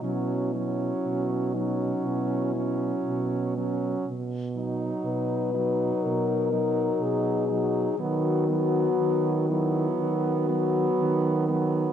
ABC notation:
X:1
M:4/4
L:1/8
Q:1/4=60
K:B
V:1 name="French horn"
E3 D E3 z | z2 B2 A2 G2 | F3 E F3 z |]
V:2 name="French horn"
C C2 C2 C2 C | z D2 D2 D2 D | B, B,2 B,2 B,2 B, |]
V:3 name="French horn" clef=bass
F, F,2 F,2 F,2 F, | z F,2 F,2 F,2 F, | F, F,2 F,2 F,2 F, |]
V:4 name="French horn" clef=bass
B,,2 B,,2 B,,2 B,,2 | B,,2 B,,2 B,,2 B,,2 | D,2 D,2 D,2 D,2 |]